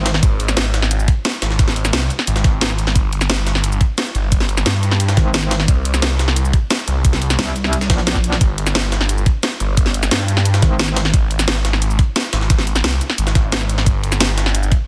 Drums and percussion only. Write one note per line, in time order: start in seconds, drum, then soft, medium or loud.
0.06 snare loud
0.06 closed hi-hat medium
0.06 shaker soft
0.14 snare soft
0.23 kick loud
0.23 closed hi-hat medium
0.23 shaker soft
0.40 closed hi-hat medium
0.48 snare medium
0.48 shaker medium
0.57 snare loud
0.57 closed hi-hat medium
0.57 shaker soft
0.65 snare soft
0.74 snare medium
0.74 closed hi-hat medium
0.74 shaker soft
0.82 snare medium
0.91 closed hi-hat medium
0.91 shaker soft
1.00 shaker soft
1.08 kick loud
1.08 closed hi-hat medium
1.25 snare loud
1.25 closed hi-hat medium
1.25 shaker soft
1.34 snare soft
1.34 shaker soft
1.42 snare loud
1.42 closed hi-hat medium
1.42 shaker soft
1.51 snare soft
1.59 kick loud
1.59 snare medium
1.59 closed hi-hat medium
1.59 shaker soft
1.68 snare soft
1.76 closed hi-hat medium
1.85 snare medium
1.85 shaker medium
1.93 snare loud
1.93 closed hi-hat medium
1.93 shaker medium
2.02 snare medium
2.10 closed hi-hat medium
2.10 shaker soft
2.19 snare medium
2.27 closed hi-hat medium
2.27 shaker soft
2.36 snare medium
2.36 shaker soft
2.44 kick loud
2.44 snare soft
2.44 closed hi-hat medium
2.61 snare loud
2.61 closed hi-hat medium
2.61 shaker soft
2.70 snare soft
2.70 shaker soft
2.78 closed hi-hat medium
2.78 shaker soft
2.87 snare soft
2.95 kick loud
2.95 closed hi-hat medium
2.95 shaker soft
3.12 closed hi-hat medium
3.21 snare medium
3.21 shaker medium
3.30 snare loud
3.30 closed hi-hat medium
3.30 closed hi-hat loud
3.30 shaker medium
3.38 snare soft
3.47 snare medium
3.47 closed hi-hat medium
3.47 shaker soft
3.55 snare medium
3.64 closed hi-hat medium
3.64 shaker soft
3.72 shaker soft
3.81 kick loud
3.81 closed hi-hat medium
3.98 snare loud
3.98 closed hi-hat medium
3.98 shaker medium
4.06 snare soft
4.06 shaker soft
4.15 closed hi-hat medium
4.15 shaker soft
4.32 kick loud
4.32 closed hi-hat medium
4.32 shaker soft
4.40 snare soft
4.40 closed hi-hat soft
4.49 closed hi-hat medium
4.57 snare medium
4.57 shaker medium
4.66 snare loud
4.66 closed hi-hat medium
4.66 shaker medium
4.74 snare medium
4.83 closed hi-hat medium
4.83 shaker soft
4.91 snare medium
5.00 closed hi-hat medium
5.00 shaker soft
5.09 snare medium
5.09 shaker soft
5.17 kick loud
5.17 snare soft
5.17 closed hi-hat medium
5.34 snare loud
5.34 closed hi-hat medium
5.34 shaker medium
5.43 snare soft
5.43 shaker soft
5.51 snare loud
5.51 closed hi-hat medium
5.51 shaker soft
5.60 snare soft
5.68 kick loud
5.68 closed hi-hat medium
5.68 shaker medium
5.85 closed hi-hat medium
5.94 snare medium
5.94 shaker medium
6.02 snare loud
6.02 closed hi-hat medium
6.02 closed hi-hat loud
6.02 shaker medium
6.11 snare soft
6.19 snare medium
6.19 closed hi-hat medium
6.19 shaker soft
6.28 snare medium
6.36 closed hi-hat medium
6.36 shaker medium
6.45 shaker soft
6.53 kick loud
6.53 closed hi-hat medium
6.71 snare loud
6.71 closed hi-hat medium
6.71 shaker medium
6.79 snare soft
6.79 shaker soft
6.88 closed hi-hat medium
6.88 shaker soft
7.05 kick loud
7.05 closed hi-hat medium
7.05 closed hi-hat loud
7.05 shaker medium
7.13 snare soft
7.13 closed hi-hat soft
7.22 closed hi-hat medium
7.30 snare medium
7.30 shaker medium
7.39 snare loud
7.39 closed hi-hat loud
7.39 closed hi-hat medium
7.39 shaker medium
7.47 snare medium
7.56 closed hi-hat medium
7.56 shaker soft
7.64 snare medium
7.73 closed hi-hat medium
7.73 closed hi-hat loud
7.73 shaker medium
7.81 snare medium
7.81 shaker soft
7.90 kick loud
7.90 snare loud
7.90 closed hi-hat medium
7.98 snare soft
8.07 snare medium
8.07 snare loud
8.07 closed hi-hat medium
8.07 closed hi-hat loud
8.07 shaker medium
8.15 kick medium
8.15 snare soft
8.15 shaker soft
8.24 closed hi-hat medium
8.24 shaker soft
8.32 snare soft
8.41 kick loud
8.41 closed hi-hat medium
8.41 shaker medium
8.58 closed hi-hat medium
8.67 snare medium
8.67 shaker medium
8.75 snare loud
8.75 closed hi-hat medium
8.75 closed hi-hat loud
8.75 shaker medium
8.84 snare soft
8.92 snare medium
8.92 closed hi-hat medium
8.92 shaker soft
9.01 snare medium
9.09 closed hi-hat loud
9.09 closed hi-hat medium
9.09 shaker medium
9.18 shaker soft
9.26 kick loud
9.26 closed hi-hat medium
9.43 snare loud
9.43 closed hi-hat medium
9.43 closed hi-hat loud
9.43 shaker soft
9.52 snare soft
9.52 shaker soft
9.60 closed hi-hat medium
9.60 shaker soft
9.77 kick loud
9.77 closed hi-hat medium
9.77 closed hi-hat loud
9.77 shaker soft
9.86 snare soft
9.86 closed hi-hat soft
9.94 closed hi-hat medium
10.03 snare medium
10.03 shaker medium
10.11 snare loud
10.11 closed hi-hat medium
10.11 closed hi-hat loud
10.11 shaker soft
10.20 snare medium
10.28 closed hi-hat medium
10.28 shaker soft
10.37 snare medium
10.45 closed hi-hat medium
10.45 shaker soft
10.54 snare medium
10.54 shaker soft
10.62 kick loud
10.62 snare soft
10.62 closed hi-hat medium
10.79 snare loud
10.79 closed hi-hat loud
10.79 closed hi-hat medium
10.79 shaker soft
10.88 snare medium
10.88 shaker soft
10.97 snare loud
10.97 closed hi-hat medium
10.97 shaker soft
11.05 snare soft
11.05 snare medium
11.14 kick loud
11.14 closed hi-hat medium
11.14 shaker soft
11.31 closed hi-hat medium
11.39 snare medium
11.39 shaker medium
11.48 snare loud
11.48 closed hi-hat loud
11.48 closed hi-hat medium
11.48 shaker soft
11.56 snare soft
11.65 snare medium
11.65 closed hi-hat medium
11.65 shaker soft
11.73 snare medium
11.82 closed hi-hat medium
11.82 shaker soft
11.90 shaker soft
11.99 kick loud
11.99 closed hi-hat medium
12.16 snare loud
12.16 closed hi-hat medium
12.16 shaker soft
12.24 snare soft
12.24 shaker soft
12.33 snare loud
12.33 closed hi-hat medium
12.33 shaker soft
12.41 snare soft
12.50 kick loud
12.50 snare medium
12.50 closed hi-hat medium
12.50 shaker soft
12.59 snare soft
12.67 closed hi-hat medium
12.76 snare medium
12.76 shaker medium
12.84 snare loud
12.84 closed hi-hat medium
12.84 shaker medium
12.93 snare soft
13.01 closed hi-hat medium
13.01 shaker soft
13.10 snare medium
13.18 closed hi-hat medium
13.18 shaker soft
13.27 snare medium
13.27 shaker soft
13.35 kick loud
13.35 snare soft
13.35 closed hi-hat medium
13.52 snare loud
13.52 closed hi-hat medium
13.52 shaker medium
13.61 snare soft
13.61 shaker soft
13.69 closed hi-hat medium
13.69 shaker soft
13.78 snare soft
13.86 kick loud
13.86 closed hi-hat medium
13.86 shaker soft
14.03 closed hi-hat medium
14.12 snare medium
14.12 shaker medium
14.20 snare loud
14.20 closed hi-hat medium
14.20 shaker medium
14.29 snare soft
14.38 snare medium
14.38 closed hi-hat medium
14.38 shaker soft
14.46 snare medium
14.55 closed hi-hat medium
14.55 shaker medium
14.63 shaker soft
14.72 kick loud
14.72 closed hi-hat medium